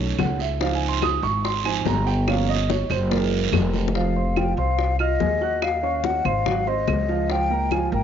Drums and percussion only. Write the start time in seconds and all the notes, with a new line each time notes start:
0.19 high bongo, low bongo, high conga, short guiro, claves
0.39 high bongo, high conga, short guiro
0.60 high bongo, high conga, long guiro
0.81 high conga
1.02 high bongo, high conga, short guiro, claves
1.23 high bongo, short guiro
1.44 high bongo, high conga, long guiro
1.65 high bongo, high conga, claves
1.85 high bongo, low bongo, high conga, short guiro
2.07 high bongo, high conga, short guiro
2.28 high bongo, high conga, long guiro, claves
2.49 high conga
2.70 high bongo, high conga, short guiro
2.90 high bongo, high conga, low conga, short guiro, claves
3.11 high bongo, high conga, low conga, long guiro
3.32 high bongo, high conga
3.52 high bongo, low bongo, high conga, short guiro, claves
3.73 high bongo, high conga, short guiro
3.88 low conga
3.95 high bongo
4.16 high conga
4.36 high bongo, high conga, claves
4.58 high bongo
4.78 high bongo, high conga
4.99 high bongo, high conga, claves
5.20 high bongo, low bongo, high conga
5.41 high bongo, high conga
5.62 high bongo, high conga, claves
5.83 high conga
6.04 high bongo, high conga
6.25 high bongo, high conga, low conga, claves
6.46 high bongo, high conga, low conga
6.67 high bongo, high conga
6.87 high bongo, low bongo, high conga, claves
7.09 high bongo, high conga
7.29 high bongo, high conga
7.50 high conga
7.71 high bongo, high conga, claves
7.93 high bongo